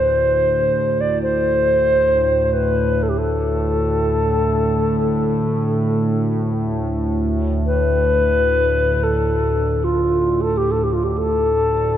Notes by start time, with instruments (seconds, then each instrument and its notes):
Already playing: synth drone D2 A2, bass flute C5
1.01 bass flute D5
1.23 bass flute C5
2.45 bass flute C5
2.53 bass flute B4
3.03 bass flute A4
3.09 bass flute G4
3.18 bass flute A4
7.66 bass flute B4
9.03 bass flute A4
9.84 bass flute F4
10.41 bass flute A4
10.57 bass flute G4
10.71 bass flute A4
10.84 bass flute G4
10.90 bass flute F4 G4
11.04 bass flute G4
11.18 bass flute A4